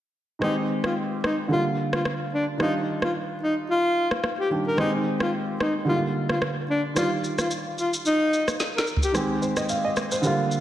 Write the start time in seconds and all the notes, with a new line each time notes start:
0.39 D#3 G#3 C4 D#4, cross-stick
0.44 G4
0.84 F4, cross-stick
1.24 D#4, cross-stick
1.48 D3 G3 A#3
1.52 F4
1.93 F4, cross-stick
2.05 cross-stick
2.34 D4
2.57 D#3 G3 D4 D#4, cross-stick
2.63 F4
3.02 F4, cross-stick
3.43 D#4
3.70 F4
4.11 cross-stick
4.24 cross-stick
4.40 G4
4.50 D#3 G3 D4 G4
4.67 A#4
4.76 D#3 G#3 C4 D#4, cross-stick
4.81 G4
5.20 F4, cross-stick
5.60 D#4, cross-stick
5.85 D3 G3 A#3 F4
5.90 D#4
5.96 F4
6.29 F4, cross-stick
6.42 cross-stick
6.70 D4
6.94 D#3 G3 F4 D5, cross-stick, shaker
6.99 F4
7.24 shaker
7.38 F4, cross-stick, shaker
7.51 shaker
7.78 F4, shaker
7.94 shaker
8.05 D#4, shaker
8.33 shaker
8.48 cross-stick, shaker
8.60 snare, shaker
8.76 A#4, snare
8.87 shaker
8.96 floor tom
9.03 G4, shaker
9.12 D#3 G#3 C4, cross-stick, shaker
9.17 G4
9.42 C5, shaker
9.57 D#5, cross-stick, shaker
9.69 F5, shaker
9.85 D#5
9.96 cross-stick, shaker
10.12 C5, shaker
10.22 D3 G3 A#3, shaker
10.27 F4
10.51 shaker